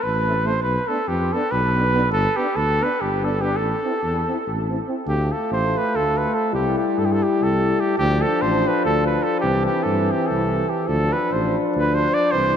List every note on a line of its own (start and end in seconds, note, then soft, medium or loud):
0.03 0.65 A1 medium
0.03 0.48 B4 medium
0.28 0.35 A3 medium
0.28 0.35 C4 medium
0.44 0.52 A3 medium
0.44 0.53 C4 medium
0.44 0.62 C5 medium
0.63 0.78 B1 medium
0.63 0.89 B4 medium
0.88 0.97 B3 medium
0.88 0.97 D4 medium
0.88 1.10 A4 medium
1.08 1.33 F2 medium
1.08 1.34 G4 medium
1.33 1.41 B3 medium
1.33 1.42 D4 medium
1.33 1.52 A4 medium
1.51 2.14 B1 loud
1.51 2.11 B4 loud
1.74 1.82 B3 medium
1.74 1.83 D4 medium
1.93 2.01 B3 medium
1.93 2.02 D4 medium
2.12 2.26 G1 loud
2.12 2.38 A4 loud
2.37 2.45 B3 medium
2.37 2.46 D4 medium
2.37 2.57 G4 medium
2.56 2.81 D2 medium
2.56 2.84 A4 medium
2.80 2.88 B3 medium
2.80 2.90 D4 medium
2.80 3.03 B4 medium
3.01 3.61 G1 medium
3.01 3.26 G4 medium
3.20 3.28 B3 medium
3.20 3.30 D4 medium
3.25 3.43 A4 medium
3.40 3.48 B3 medium
3.40 3.50 D4 medium
3.40 3.58 G4 medium
3.56 3.73 A1 medium
3.56 4.86 A4 medium
3.84 3.91 C4 medium
3.84 3.93 E4 medium
4.03 4.28 E2 medium
4.28 4.36 C4 medium
4.28 4.37 E4 medium
4.47 4.79 A1 medium
4.69 4.77 C4 soft
4.69 4.78 E4 soft
4.88 4.95 C4 medium
4.88 4.95 E4 soft
5.06 5.31 D2 loud
5.06 6.54 A3 medium
5.06 6.54 F4 medium
5.06 5.34 G4 medium
5.32 5.51 A4 medium
5.51 5.75 A1 medium
5.51 5.79 C5 medium
5.77 5.97 B4 medium
5.95 6.27 D2 medium
5.95 6.19 A4 medium
6.18 6.36 B4 medium
6.34 6.52 A4 medium
6.53 6.77 C2 medium
6.53 7.98 G3 medium
6.53 7.98 E4 medium
6.53 6.77 G4 medium
6.78 7.00 G4 medium
6.98 7.22 G2 medium
6.98 7.07 A4 medium
7.06 7.14 G4 medium
7.12 7.24 A4 medium
7.23 7.44 G4 medium
7.42 7.73 C2 medium
7.42 7.82 A4 loud
7.80 7.97 G4 medium
7.98 8.23 D2 loud
7.98 9.44 F3 medium
7.98 9.45 D4 medium
7.98 8.23 G4 loud
8.22 8.43 A4 medium
8.42 8.66 A1 medium
8.42 8.69 C5 loud
8.67 8.84 B4 medium
8.85 9.17 D2 medium
8.85 9.06 A4 loud
9.06 9.25 B4 medium
9.23 9.40 A4 medium
9.40 9.67 C2 medium
9.40 10.90 E3 medium
9.40 10.74 C4 medium
9.40 9.65 G4 loud
9.66 9.85 G4 medium
9.83 10.10 G2 medium
9.83 10.13 A4 medium
10.11 10.29 G4 medium
10.27 10.62 C2 medium
10.27 10.71 A4 medium
10.69 10.89 G4 medium
10.87 11.12 D2 medium
10.87 12.36 F3 medium
10.87 12.35 D4 medium
10.87 11.14 A4 loud
11.13 11.34 B4 medium
11.32 11.56 A1 medium
11.32 11.57 C5 medium
11.76 12.08 D2 medium
11.76 11.96 B4 loud
11.95 12.15 C5 loud
12.14 12.33 D5 loud
12.31 12.57 C2 medium
12.31 12.57 E3 medium
12.31 12.57 C4 medium
12.31 12.57 C5 loud